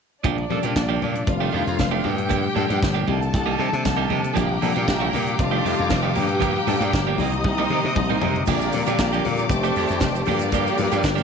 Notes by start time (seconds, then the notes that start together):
0.23 A#1 C3 F3 G3 A#3 D4 G4 D5, kick, closed hi-hat, muted conga, low conga
0.38 muted clean electric guitar stroke, muted conga
0.49 A#2 C3 F3 G3 A#3 C#4 D4 A4, high conga
0.57 D4
0.63 A#2 F3 A#3 D4 G4, closed hi-hat
0.76 A#1, kick, snare, closed hi-hat
0.89 F3 A#3 D4 G4
1.02 A#2 F3 A#3 D4 G4, high conga, low conga
1.15 muted clean electric guitar stroke, closed hi-hat
1.27 F1 C3 D#3 G3 A3 D4 F4 F5, muted clean electric guitar stroke, kick, closed hi-hat, muted conga
1.40 D#3 A3 D4 G4, muted conga
1.52 F2 C3 D#3 G3 A3 D4 G4, high conga
1.67 F2, muted clean electric guitar stroke, closed hi-hat
1.78 F1, muted clean electric guitar stroke, kick, snare, closed hi-hat, muted conga, high conga
1.91 D#3 A3 D4 G4
2.04 G2 A2 F3 G3 A3 A#3 D4 G4 G5, high conga, low conga
2.11 A#2
2.17 muted clean electric guitar stroke, closed hi-hat
2.29 F3 A#3 D4 G4, kick, closed hi-hat, low conga
2.43 muted clean electric guitar stroke, muted conga
2.54 G2 A#2 F3 G3 A3 A#3 D4 A4, high conga
2.69 G2 F3 A#3 D4 G4, closed hi-hat
2.83 G1, kick, snare, closed hi-hat
2.94 F3 A#3 D4 G4
3.06 C2 C3 D#3 G3 A#3 C4 D#4 G4 A4 A5, high conga, low conga
3.16 D4
3.21 muted clean electric guitar stroke, closed hi-hat
3.33 C2, muted clean electric guitar stroke, kick, closed hi-hat, muted conga
3.46 G3 A#3 D#4 G4, muted conga
3.58 C3 D#3 G3 A#3 D4 D#4 G4, high conga
3.72 C3, muted clean electric guitar stroke, closed hi-hat
3.83 C2, muted clean electric guitar stroke, kick, snare, closed hi-hat, muted conga, high conga
3.97 G3 A#3 D#4 G4
4.09 C3 G3 A#3 D#4 G4, high conga, low conga
4.22 muted clean electric guitar stroke, closed hi-hat
4.34 A#1 C3 F3 G3 A#3 D4 G4 F5 G5 A#5 D6, kick, closed hi-hat, muted conga, low conga
4.38 F3 A#3 D4
4.49 muted clean electric guitar stroke, muted conga
4.61 A#2 C3 F3 G3 A#3 D4 A4, open hi-hat, high conga
4.75 A#2 F3 A#3 D4 G4, closed hi-hat
4.87 A#1, muted clean electric guitar stroke, kick, snare, closed hi-hat
5.00 F3 A#3 D4 G4
5.13 A#2 F3 A#3 D4 G4, open hi-hat, high conga, low conga
5.26 muted clean electric guitar stroke, closed hi-hat
5.38 F1 C3 D#3 G3 A3 D4 F4 D#5 F5 A5, muted clean electric guitar stroke, kick, closed hi-hat, muted conga
5.51 D#3 A3 D4 G4
5.64 F2 C3 D#3 G3 A3 D4 D#4 G4, open hi-hat, high conga
5.79 F2, muted clean electric guitar stroke, closed hi-hat
5.89 F1, muted clean electric guitar stroke, kick, snare, closed hi-hat, high conga
6.03 D#3 A3 D4 G4, muted conga
6.14 G2 A2 F3 G3 A#3 D4 G4 F5 G5 A#5, open hi-hat, high conga, low conga
6.18 F3 A3 D4
6.24 A#2
6.28 muted clean electric guitar stroke, closed hi-hat
6.40 F3 A#3 D4 G4, kick, closed hi-hat, muted conga, low conga
6.54 muted clean electric guitar stroke
6.67 G2 A#2 F3 G3 A3 A#3 D4 A4, open hi-hat, high conga
6.80 G2 F3 A#3 D4 G4, closed hi-hat
6.93 G1, muted clean electric guitar stroke, kick, snare, closed hi-hat
7.07 F3 A#3 D4 G4, muted conga
7.18 C2 C3 D#3 G3 A#3 C4 D#4 G4 C5 D#5 A#5 D#6, open hi-hat, high conga, low conga
7.32 muted clean electric guitar stroke, closed hi-hat
7.44 C2, muted clean electric guitar stroke, kick, high tom
7.58 G3 A#3 D#4 G4, high tom, muted conga
7.69 C3 D#3 G3 A#3 D#4 G4, mid tom, high conga
7.83 C3, muted clean electric guitar stroke, mid tom
7.96 C2, muted clean electric guitar stroke, kick, mid tom, muted conga, high conga
8.09 G3 A#3 D#4 G4, mid tom, muted conga
8.22 C3 G3 A#3 D#4 G4, floor tom, high conga, low conga
8.36 muted clean electric guitar stroke, floor tom
8.46 A#1 D3 F3 G3 A#3 C4 D4 F4 G4 D5 F5 A#5 D6, kick, crash, low conga, shaker
8.61 shaker
8.72 A#2 D3 G3 A#3 C4 G4, muted clean electric guitar stroke, open hi-hat, high conga, shaker
8.86 A#2 F3 A#3 D4 G4, closed hi-hat, shaker
8.98 A#1, muted clean electric guitar stroke, kick, snare, closed hi-hat, muted conga, shaker
9.13 F3 A#3 D4 G4, muted conga, shaker
9.23 A#2 D3 G3 A#3 C4 F4, muted clean electric guitar stroke, open hi-hat, high conga, low conga
9.37 muted clean electric guitar stroke, closed hi-hat, shaker
9.49 F1 D#3 A3 C4 D4 G4 C5 D5 A5, muted clean electric guitar stroke, kick, closed hi-hat, shaker
9.64 D#3 A3 D4 G4, shaker
9.76 F2 D#3 A3 D4 G4, open hi-hat
9.89 F2, muted clean electric guitar stroke, closed hi-hat, shaker
10.00 F1, kick, snare, closed hi-hat, muted conga, high conga, shaker
10.15 muted clean electric guitar stroke, muted conga, shaker
10.25 G2 F3 G3 A#3 D4 F4 G4 A4 D5 F5 G5 D6, open hi-hat, high conga, low conga
10.39 muted clean electric guitar stroke, closed hi-hat, shaker
10.52 F3 A#3 D4 G4, kick, closed hi-hat, muted conga, low conga, shaker
10.67 shaker
10.76 G2 G3 A#3 D4 F4 A#4, muted clean electric guitar stroke, open hi-hat, high conga, shaker
10.92 G2 F3 A#3 D4 G4, closed hi-hat, shaker
11.03 G1, kick, snare, closed hi-hat, muted conga, shaker
11.15 F3 A#3 D4 G4, muted conga, shaker